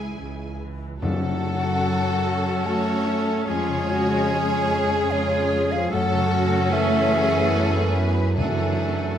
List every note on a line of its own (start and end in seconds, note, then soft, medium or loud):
0.00 1.05 C#3 medium
0.00 0.64 E3 medium
0.00 0.15 G#3 soft
0.00 0.16 G#3 medium
0.00 0.64 C#4 medium
0.00 1.63 C#4 soft
0.00 0.58 E4 soft
0.00 0.60 E4 medium
0.00 0.59 G#4 medium
0.00 0.60 G#5 medium
0.15 0.92 C#2 medium
0.15 0.59 C#3 medium
0.15 1.05 G#3 soft
0.59 1.01 E3 medium
0.59 1.05 E4 soft
1.01 3.44 F#2 medium
1.01 3.52 F#2 medium
1.01 2.22 F#2 loud
1.01 2.62 F#3 loud
1.01 3.44 F#3 medium
1.01 5.88 C#4 medium
1.01 3.45 F#4 medium
1.01 2.62 A4 loud
1.01 3.44 A4 medium
1.01 3.49 A4 medium
1.01 2.68 F#5 loud
1.23 3.52 C#3 medium
1.43 3.27 A3 medium
1.85 2.63 A4 medium
1.85 2.24 C#5 medium
2.26 2.66 C#5 medium
2.47 4.90 C#6 medium
2.65 3.47 A3 loud
2.65 3.07 F#4 medium
2.65 3.47 C#5 medium
2.65 3.07 C#5 medium
2.65 3.48 A5 loud
2.87 3.52 A4 medium
3.08 3.48 C#4 medium
3.08 4.28 C#5 medium
3.46 5.95 F2 medium
3.46 5.88 F2 medium
3.46 5.07 G#3 loud
3.46 5.88 G#3 medium
3.46 5.88 C#4 medium
3.46 3.89 F4 medium
3.46 5.90 G#4 medium
3.46 5.93 G#4 medium
3.46 5.08 C#5 loud
3.46 5.13 G#5 loud
3.68 5.95 C#3 medium
3.89 5.71 G#3 medium
3.89 4.30 F#4 medium
4.09 7.99 C#4 medium
4.29 5.93 G#4 medium
4.29 4.69 C#5 medium
4.71 5.10 C#5 medium
4.91 7.32 C#6 medium
5.11 5.72 C#3 loud
5.11 5.72 F4 loud
5.11 5.73 C#5 loud
5.11 5.51 C#5 medium
5.32 5.95 G#4 medium
5.52 6.71 C#5 medium
5.72 5.93 F3 loud
5.72 5.96 G#3 medium
5.72 5.92 G#4 medium
5.72 5.92 F5 loud
5.90 9.18 F#2 loud
5.90 8.37 F#2 loud
5.90 6.70 F#3 loud
5.90 8.32 A3 loud
5.90 8.20 C#4 medium
5.90 7.49 C#4 loud
5.90 8.33 C#4 loud
5.90 8.33 F#4 medium
5.90 8.20 A4 medium
5.90 6.71 A4 loud
5.90 6.32 A4 medium
5.90 6.74 F#5 loud
6.13 8.40 C#3 medium
6.32 8.16 A3 medium
6.32 6.72 F#4 loud
6.52 9.00 F#4 medium
6.70 8.35 E3 loud
6.70 8.35 G#4 loud
6.70 7.13 A4 medium
6.70 7.95 C#5 medium
6.70 8.09 E5 loud
7.13 7.54 G#4 medium
7.13 7.53 F#5 medium
7.33 8.40 C#6 medium
7.54 8.37 B3 medium
7.54 7.95 A4 medium
7.54 9.18 F#5 medium
7.95 8.37 B4 medium
7.95 8.41 C#5 medium
8.17 8.79 A3 medium
8.37 9.18 F#2 medium
8.37 9.18 E3 medium
8.37 9.18 F#3 medium
8.37 9.18 A3 medium
8.37 9.18 D4 medium
8.37 9.18 F#4 medium
8.37 9.18 G#4 medium
8.37 9.18 A4 medium
8.37 9.18 E5 medium
8.59 9.18 F#3 soft
8.80 9.18 A3 soft
9.01 9.18 F#4 soft